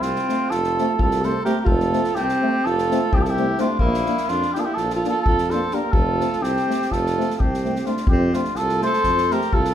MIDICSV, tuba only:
0, 0, Header, 1, 2, 480
1, 0, Start_track
1, 0, Key_signature, -1, "major"
1, 0, Tempo, 473560
1, 1689, Time_signature, 9, 3, 24, 8
1, 9872, End_track
2, 0, Start_track
2, 0, Title_t, "Tuba"
2, 0, Program_c, 0, 58
2, 5, Note_on_c, 0, 36, 82
2, 160, Note_off_c, 0, 36, 0
2, 511, Note_on_c, 0, 29, 78
2, 784, Note_off_c, 0, 29, 0
2, 1005, Note_on_c, 0, 36, 86
2, 1379, Note_off_c, 0, 36, 0
2, 1678, Note_on_c, 0, 29, 102
2, 1953, Note_off_c, 0, 29, 0
2, 2186, Note_on_c, 0, 36, 78
2, 2336, Note_off_c, 0, 36, 0
2, 2684, Note_on_c, 0, 29, 79
2, 2954, Note_off_c, 0, 29, 0
2, 3181, Note_on_c, 0, 36, 88
2, 3551, Note_off_c, 0, 36, 0
2, 3858, Note_on_c, 0, 34, 98
2, 4128, Note_off_c, 0, 34, 0
2, 4348, Note_on_c, 0, 41, 80
2, 4497, Note_off_c, 0, 41, 0
2, 4837, Note_on_c, 0, 34, 81
2, 5110, Note_off_c, 0, 34, 0
2, 5331, Note_on_c, 0, 41, 79
2, 5704, Note_off_c, 0, 41, 0
2, 6014, Note_on_c, 0, 29, 93
2, 6285, Note_off_c, 0, 29, 0
2, 6505, Note_on_c, 0, 36, 80
2, 6656, Note_off_c, 0, 36, 0
2, 7006, Note_on_c, 0, 29, 88
2, 7276, Note_off_c, 0, 29, 0
2, 7501, Note_on_c, 0, 36, 75
2, 7872, Note_off_c, 0, 36, 0
2, 8177, Note_on_c, 0, 41, 106
2, 8448, Note_off_c, 0, 41, 0
2, 8672, Note_on_c, 0, 36, 81
2, 8942, Note_off_c, 0, 36, 0
2, 9169, Note_on_c, 0, 41, 85
2, 9438, Note_off_c, 0, 41, 0
2, 9659, Note_on_c, 0, 36, 82
2, 9872, Note_off_c, 0, 36, 0
2, 9872, End_track
0, 0, End_of_file